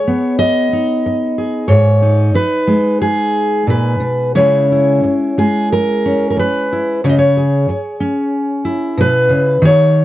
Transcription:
Already playing: steel-string acoustic guitar G#4 C#5
0.07 steel-string acoustic guitar B3
0.39 steel-string acoustic guitar D#5
0.73 steel-string acoustic guitar D#4
1.06 muted steel-string acoustic guitar stroke
1.38 steel-string acoustic guitar G#4
1.68 steel-string acoustic guitar G#2 C#5
2.02 steel-string acoustic guitar D#4
2.34 steel-string acoustic guitar B4, muted steel-string acoustic guitar stroke
2.67 steel-string acoustic guitar G#3
3.02 steel-string acoustic guitar G#4
3.67 steel-string acoustic guitar A#2 B4
4.00 steel-string acoustic guitar B2
4.35 steel-string acoustic guitar C#3 G#3 C#4 E4 C#5
4.72 steel-string acoustic guitar E4
5.04 muted steel-string acoustic guitar stroke
5.38 steel-string acoustic guitar G#3 G#4
5.73 steel-string acoustic guitar A#4
6.06 steel-string acoustic guitar C#4
6.30 steel-string acoustic guitar A#4
6.37 steel-string acoustic guitar B4, muted steel-string acoustic guitar stroke
6.72 steel-string acoustic guitar E4
7.04 steel-string acoustic guitar C#3 C#5
7.09 steel-string acoustic guitar D#5
7.18 steel-string acoustic guitar C#5
7.37 steel-string acoustic guitar G#4
7.69 muted steel-string acoustic guitar stroke
8.00 steel-string acoustic guitar C#4
8.65 steel-string acoustic guitar E4
8.97 steel-string acoustic guitar B2 B4
9.29 steel-string acoustic guitar C#3
9.62 steel-string acoustic guitar D#3 C#5

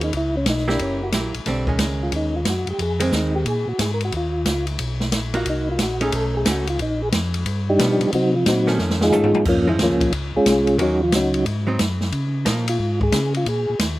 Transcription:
Already playing: tonewheel organ D#2, hollow-body jazz guitar G#4 C5
0.01 tonewheel organ D#4, ride
0.13 tonewheel organ C#2, kick, ride
0.17 tonewheel organ E4
0.37 tonewheel organ C#4
0.46 tonewheel organ B1 D#4, kick, snare, hi-hat pedal, ride
0.57 snare
0.68 hollow-body jazz guitar A#3 E4 G4, tonewheel organ D4, snare
0.79 tonewheel organ F#1 C#4, kick, ride
1.03 tonewheel organ F#4
1.12 tonewheel organ A#1, hollow-body jazz guitar F#3 A#3 E4 G4, kick, snare, hi-hat pedal, ride
1.34 tonewheel organ A#1, ride
1.46 tonewheel organ B1, hollow-body jazz guitar D3 G3 C4, kick, snare, ride
1.67 hollow-body jazz guitar D#3 G#3 C#4, kick
1.79 tonewheel organ C#2, kick, snare, hi-hat pedal, ride
2.03 tonewheel organ F4
2.12 tonewheel organ D#2, kick, ride
2.16 tonewheel organ D#4
2.36 tonewheel organ F4
2.45 tonewheel organ F#2, kick, snare, hi-hat pedal, ride
2.50 tonewheel organ F#4
2.67 tonewheel organ F#2 G4, ride
2.78 tonewheel organ F2 G#4, kick, ride
3.00 hollow-body jazz guitar D#3 G#3 C4, tonewheel organ C4, ride
3.12 tonewheel organ D#2 D#4, kick, snare, hi-hat pedal
3.36 tonewheel organ G4
3.45 tonewheel organ A#2 G#4, kick, ride
3.67 tonewheel organ A#2 F#4
3.78 tonewheel organ G#2 G#4, kick, snare, hi-hat pedal, ride
3.94 tonewheel organ A#4
4.01 ride
4.05 tonewheel organ F#4
4.12 tonewheel organ D#2, kick, ride
4.17 tonewheel organ F4
4.45 tonewheel organ C#2, kick, snare, hi-hat pedal, ride
4.67 ride
4.79 tonewheel organ B1, kick, ride
5.00 snare
5.12 tonewheel organ A#1, kick, snare, hi-hat pedal, ride
5.34 hollow-body jazz guitar A#3 D#4 F#4, tonewheel organ F4, ride
5.45 tonewheel organ C2, kick, ride
5.50 tonewheel organ D#4
5.72 tonewheel organ F4
5.79 tonewheel organ A#1, kick, snare, hi-hat pedal, ride
5.83 tonewheel organ F#4
6.01 hollow-body jazz guitar A3 C#4 D#4, tonewheel organ G#4, ride
6.12 tonewheel organ B1 A4, kick, ride
6.37 tonewheel organ G#4
6.45 tonewheel organ C#2 F#4, hollow-body jazz guitar A3 C#4 D#4, kick, snare, hi-hat pedal, ride
6.67 tonewheel organ F4, ride
6.79 tonewheel organ A#1 D#4, kick, ride
7.02 tonewheel organ G#4
7.12 tonewheel organ F2, kick, snare, hi-hat pedal, ride
7.34 ride
7.46 tonewheel organ G2, kick, ride
7.69 tonewheel organ G3 D4 D#4 G4
7.79 tonewheel organ B2, hollow-body jazz guitar F3 B3, kick, snare, hi-hat pedal, ride
8.00 tonewheel organ B2, ride
8.12 tonewheel organ C3 F#3 C4 D#4 F#4, kick, ride
8.35 tonewheel organ F3 F4
8.46 tonewheel organ A#2 F#3 C4 D#4 F#4, kick, snare, hi-hat pedal, ride
8.67 hollow-body jazz guitar D#3 A3 C#4, snare
8.79 tonewheel organ F2, snare
8.90 snare
9.01 tonewheel organ G#3 D#4 F4 G#4, snare
9.11 tonewheel organ G#2, hollow-body jazz guitar D#3 A3 C#4, floor tom, hi-hat pedal
9.24 floor tom
9.35 floor tom
9.45 tonewheel organ F2 F3 A#3 C#4 F4, kick, crash
9.67 tonewheel organ E3 E4, hollow-body jazz guitar F3 G#3 C#4
9.79 tonewheel organ D#2 A#3 F4, kick, snare, hi-hat pedal, ride
9.83 tonewheel organ F3 C#4
9.90 tonewheel organ C#2
10.01 tonewheel organ A#1, kick, ride
10.12 tonewheel organ C#2, kick, ride
10.34 tonewheel organ C#2 G#3 C#4 F4 G#4
10.46 tonewheel organ C2, kick, snare, hi-hat pedal, ride
10.67 ride
10.78 tonewheel organ D#2 F#3 C#4 D#4 F#4, hollow-body jazz guitar D#3 A#3 C#4 F#4, kick, ride
11.03 tonewheel organ F3 F4
11.12 tonewheel organ C#2 F#3 C#4 D#4 F#4, kick, snare, hi-hat pedal, ride
11.34 ride
11.46 tonewheel organ G#2, kick, ride
11.67 hollow-body jazz guitar F#3 C4 D#4
11.79 tonewheel organ F#2, kick, snare, hi-hat pedal, ride
12.01 snare
12.12 tonewheel organ C#3, kick, ride
12.45 tonewheel organ A#2, hollow-body jazz guitar F3 A#3 D#4, kick, snare, hi-hat pedal, ride
12.68 tonewheel organ F4, ride
12.79 tonewheel organ G#2, kick
13.01 tonewheel organ G#4, kick
13.12 tonewheel organ C#3, kick, snare, hi-hat pedal, ride
13.34 tonewheel organ F4, ride
13.46 tonewheel organ A#2 G#4, kick, ride
13.69 tonewheel organ A#2
13.79 tonewheel organ D#2, kick, snare, hi-hat pedal, ride

